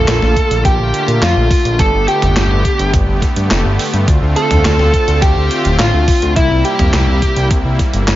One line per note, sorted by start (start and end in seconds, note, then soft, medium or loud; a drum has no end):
0.00 6.32 D3 medium
0.00 6.32 A3 medium
0.00 1.75 A#3 medium
0.00 1.77 F4 medium
0.00 0.64 A4 loud
0.00 0.67 A5 loud
0.08 0.21 A#1 loud
0.08 snare loud
0.08 clap loud
0.08 closed hi-hat medium
0.22 0.35 A#1 medium
0.22 snare soft
0.36 kick medium
0.36 closed hi-hat medium
0.51 0.64 A#1 medium
0.51 closed hi-hat medium
0.65 0.78 A#1 loud
0.65 1.24 G4 loud
0.65 1.24 G5 loud
0.65 kick loud
0.65 closed hi-hat medium
0.79 0.92 A#1 medium
0.94 closed hi-hat medium
1.08 1.21 A#2 medium
1.08 closed hi-hat medium
1.22 1.35 F2 loud
1.22 1.81 F4 medium
1.22 1.81 F5 medium
1.22 snare loud
1.22 clap medium
1.22 closed hi-hat loud
1.36 1.49 A#1 medium
1.51 kick loud
1.51 open hi-hat medium
1.65 1.78 A#1 medium
1.65 closed hi-hat medium
1.79 1.92 G1 loud
1.79 4.05 B3 medium
1.79 4.05 G4 medium
1.79 2.08 A4 loud
1.79 2.09 A5 loud
1.79 kick loud
1.79 closed hi-hat medium
1.94 2.07 G1 medium
2.08 2.90 G4 medium
2.08 2.90 G5 medium
2.08 closed hi-hat medium
2.22 2.35 G1 medium
2.22 closed hi-hat medium
2.22 mid tom medium
2.36 2.49 G1 loud
2.36 snare loud
2.36 clap medium
2.36 closed hi-hat medium
2.51 2.64 G1 medium
2.65 kick medium
2.65 closed hi-hat medium
2.79 2.92 G1 medium
2.79 closed hi-hat medium
2.94 3.07 G1 loud
2.94 kick loud
2.94 closed hi-hat medium
2.94 mid tom medium
3.08 3.21 G1 medium
3.22 kick medium
3.22 snare soft
3.22 closed hi-hat medium
3.36 3.49 G2 medium
3.36 closed hi-hat medium
3.51 3.64 F1 loud
3.51 snare loud
3.51 clap medium
3.51 closed hi-hat medium
3.65 3.78 G1 medium
3.79 open hi-hat medium
3.93 4.07 G2 medium
3.93 closed hi-hat medium
4.08 4.21 D2 loud
4.08 6.34 C4 medium
4.08 6.34 F4 medium
4.08 kick loud
4.08 closed hi-hat medium
4.22 4.35 D2 medium
4.36 5.21 A4 loud
4.36 5.25 A5 loud
4.36 closed hi-hat medium
4.51 4.64 D2 medium
4.51 closed hi-hat medium
4.51 mid tom loud
4.65 4.78 D2 loud
4.65 snare loud
4.65 clap medium
4.65 closed hi-hat medium
4.79 4.92 D2 medium
4.79 snare soft
4.94 kick medium
4.94 closed hi-hat medium
5.08 5.21 D2 medium
5.08 closed hi-hat medium
5.22 5.35 D2 loud
5.22 5.75 G4 loud
5.22 5.75 G5 loud
5.22 kick loud
5.22 closed hi-hat medium
5.36 5.49 D2 medium
5.51 closed hi-hat medium
5.65 5.78 D1 medium
5.65 closed hi-hat medium
5.79 5.92 A1 loud
5.79 6.32 F4 medium
5.79 6.32 F5 medium
5.79 snare loud
5.79 clap medium
5.79 closed hi-hat medium
5.94 6.07 D2 medium
6.08 kick loud
6.08 open hi-hat medium
6.22 6.35 D2 medium
6.22 closed hi-hat medium
6.36 6.49 C2 loud
6.36 8.16 C3 medium
6.36 8.16 G3 medium
6.36 8.16 A#3 medium
6.36 6.63 E4 medium
6.36 8.16 E4 medium
6.36 6.63 E5 medium
6.36 kick loud
6.36 closed hi-hat medium
6.51 6.64 C2 medium
6.65 7.47 G4 medium
6.65 7.47 G5 medium
6.65 closed hi-hat medium
6.79 6.92 C2 medium
6.79 closed hi-hat medium
6.79 mid tom loud
6.94 7.07 C2 loud
6.94 snare loud
6.94 clap medium
6.94 closed hi-hat medium
7.08 7.21 C2 medium
7.22 kick medium
7.22 closed hi-hat medium
7.36 7.49 C2 medium
7.36 closed hi-hat medium
7.51 7.64 C2 loud
7.51 kick loud
7.51 closed hi-hat medium
7.65 7.78 C2 medium
7.79 kick medium
7.79 snare soft
7.79 closed hi-hat medium
7.93 8.07 G1 medium
7.93 closed hi-hat medium
8.08 8.16 G1 loud
8.08 snare loud
8.08 clap loud
8.08 closed hi-hat medium